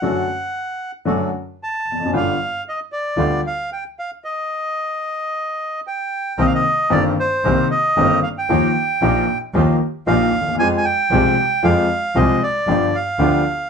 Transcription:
Already playing: F#5
0.02 F#1 F#2 D3 F#3 A3 D4 F#4
1.05 F#1 F#2 D3 F#3 A3 D4 F#4
1.63 A5
1.85 F1
1.92 E2
2.00 F2
2.05 F#2
2.11 G1 G2 D3 G3 B3 F4 G4
2.17 F5
2.69 D#5
2.92 D5
3.17 D2 D3 G3 B3 F4 G4
3.47 F5
3.73 G5
3.99 F5
4.24 D#5
5.87 G5
6.37 C2 C3 D#3 A#3 C4 D#4 G4 A#4 D#5
6.47 F5
6.55 D#5
6.90 G1 G2 D#3 A#3 C4 D#4 G4 A#4 D5
7.20 C5
7.44 C2 C3 D#3 A#3 C4 D#4 G4 A#4
7.71 D#5
7.97 G1 G2 D#3 A#3 C4 D#4 G4 A#4
8.23 F5
8.38 G5
8.49 D#2 D#3 F3 A#3 D#4 F4 G4
9.01 A#1 A#2 F3 A#3 D#4 F4 G4
9.54 D#2 D#3 F3 A#3 D#4 F4 G4
10.07 A#1 A#2 F3 A#3 D#4 F4 G4 F5
10.33 D#2
10.41 D2
10.46 D#2
10.55 E2 F2
10.59 F2 F3 G#3 C4 F4 G4 G#5
10.78 G#5
10.85 G5
11.10 C2 C3 F3 G#3 C4 F4 G4
11.63 F2 F3 G#3 C4 F4 G4 F5
12.15 C2 C3 F3 G#3 C4 F4 G4 D#5
12.43 D5
12.66 G1 G2 F3 B3 D4 F4 G4
12.95 F5
13.19 D2 D3 F3 B3 D4 F4 G4

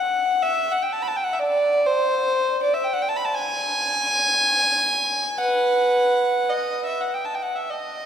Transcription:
Already playing: F#5
0.42 E5
0.72 F#5
0.83 G5
0.92 A5
1.02 B5
1.07 A5
1.16 G5
1.24 F#5
1.33 E5
1.39 D5
1.86 C5
2.63 D5
2.74 E5
2.84 G5
2.93 F#5
3.02 G5
3.09 A5
3.16 B5
3.24 A5
3.35 G#5
5.38 B4 F#5
6.49 D#5
6.86 E5
7.01 F#5
7.14 G5
7.25 A5
7.34 G5
7.42 F#5
7.56 E5
7.70 D#5

